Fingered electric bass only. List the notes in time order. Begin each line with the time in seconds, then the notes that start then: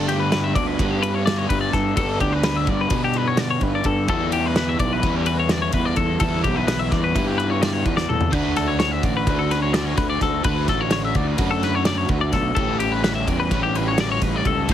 Already playing: G2
0.56 D2
0.79 G2
1.50 G2
1.74 G2
1.97 G2
2.21 D2
2.68 G2
2.91 B2
3.62 G2
3.85 G2
4.08 E2
4.79 B1
5.03 E2
5.74 E2
5.97 E2
6.21 E2
6.45 B1
6.92 E2
7.16 G2
7.86 E2
8.10 E2
8.33 D2
9.03 A1
9.27 D2
9.98 D2
10.22 D2
10.45 D2
10.68 A1
11.15 D2
11.39 F#2
12.09 D2
12.33 B1
12.57 A1
13.27 E2
13.51 A1
14.22 A1
14.45 C#2
14.69 D2